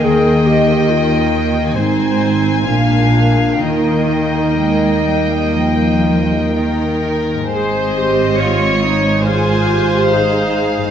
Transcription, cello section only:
X:1
M:4/4
L:1/8
Q:1/4=68
K:Eb
V:1 name="Cello section" clef=bass
E,4 A,,2 B,,2 | E,2 A, G, F,2 E,2 | [K:Ab] A,,8 |]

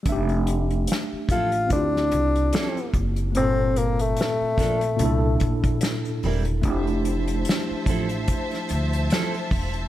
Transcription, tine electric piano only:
X:1
M:4/4
L:1/8
Q:"Swing 16ths" 1/4=73
K:F
V:1 name="Tine electric piano"
[G,A,DGe]4 [CEFG]4 | [B,,A,CFA]4 [B,,DEA]4 | [A,DEG]8 |]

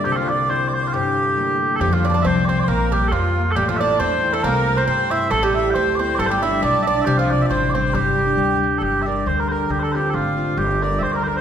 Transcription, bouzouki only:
X:1
M:2/4
L:1/16
Q:"Swing" 1/4=137
K:Gdor
V:1 name="Bouzouki"
z8 | z8 | G, F, D/2 D/2 D C2 C2 | B,2 G,2 F,3 z |
G, F, D2 C3 A, | B,3 C C2 E2 | A, G,3 C2 C2 | A, G, E2 D2 D2 |
G, F,3 C2 C2 | G,6 z2 | z8 | z8 |
z8 |]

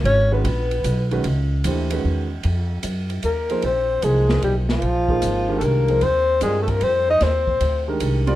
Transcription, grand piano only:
X:1
M:3/4
L:1/8
Q:"Swing" 1/4=151
K:C#dor
V:1 name="Grand piano"
z [D,G,CFB] z3 [D,G,CFB] | z2 [E,=A,=D=G^B] [^D,^G,CF=B]2 z | z4 z [=F,A,DG=c] | [K:Bbmix] z2 [F,B,EAc]3 z |
z [F,B,EAc]2 [E,A,DGB]2 [F,B,EAc] | z2 [G,CFBd]3 z | z3 [E,A,DGB]2 [G,CFBd] |]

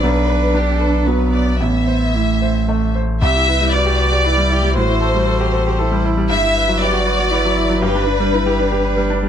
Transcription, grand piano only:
X:1
M:3/4
L:1/16
Q:1/4=117
K:Ador
V:1 name="Grand piano"
B,,,2 B2 D2 B2 F,2 B2 | A,,,2 c2 E2 c2 A,2 c2 | C,, E B G, B G B G B G, E G, | A,, E A G, A G A G A G, E G, |
G,, E B F, B F B F B F, E F, | G,, D B G, B G B G B G, D G, |]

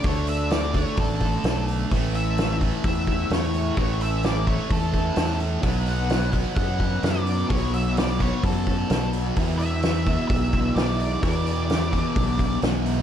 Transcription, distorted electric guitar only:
X:1
M:4/4
L:1/8
Q:1/4=129
K:Amix
V:1 name="Distorted electric guitar" clef=bass
[D,A,D]3 [D,A,D]4- [D,A,D] | [A,,E,A,]3 [A,,E,A,]4- [A,,E,A,] | [A,,E,A,]3 [A,,E,A,]4- [A,,E,A,] | [B,,F,B,]3 [B,,F,B,]4- [B,,F,B,] |
[B,,F,B,]3 [B,,F,B,]4- [B,,F,B,] | [E,,B,,E,]3 [E,,B,,E,]4- [E,,B,,E,] | [E,,B,,E,]3 [E,,B,,E,]4- [E,,B,,E,] |]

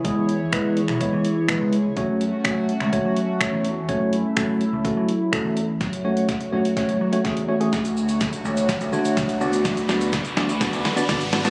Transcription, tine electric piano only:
X:1
M:4/4
L:1/16
Q:1/4=125
K:F#m
V:1 name="Tine electric piano"
[G,B,EG]2 z2 [G,B,EB]2 z2 [G,B,Ec]2 z2 [G,B,EB]2 z2 | [A,CFc]2 z2 [A,CFc]2 z2 [A,CFc]2 z2 [A,CFc]2 z2 | [A,CFc]2 z2 [A,CFA]2 z2 [A,CFA]2 z2 [A,CFA]2 z2 | z2 [A,CFc]2 z2 [A,CFc] z [A,CFc]2 z [A,CFc] [A,CFG] z [A,CFc] [A,CFG] |
z8 z2 [A,DFc]4 [B,DFd]2- | [B,DFd] z [B,DFd]2 z2 [B,DFd] z [B,DFd]2 z [B,DFd] [B,DFd] z [B,DFd] [B,DFd] |]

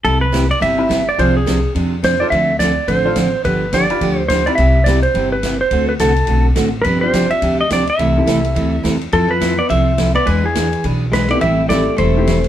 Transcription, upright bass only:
X:1
M:4/4
L:1/8
Q:"Swing" 1/4=211
K:C
V:1 name="Upright bass" clef=bass
C,,4 G,,,4 | C,,4 F,,4 | D,,4 A,,,4 | G,,,4 D,,4 |
C,,4 G,,,4 | D,,2 C,,2 B,,,2 A,,,2 | G,,,4 D,,4 | C,,2 C,,2 D,,2 E,,2 |
F,,4 C,,4 | E,,4 B,,,4 | A,,,4 E,,,4 |]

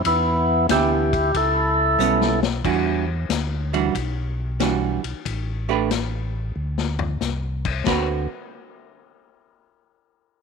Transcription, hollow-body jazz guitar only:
X:1
M:4/4
L:1/8
Q:"Swing" 1/4=92
K:Dmix
V:1 name="Hollow-body jazz guitar"
z2 [E,B,DG] z3 [G,B,^C] z | [E,G,DF] z2 [E,G,DF] z2 [E,G,DF] z | z [A,DGB] z6 | [D,CFB] z6 z |]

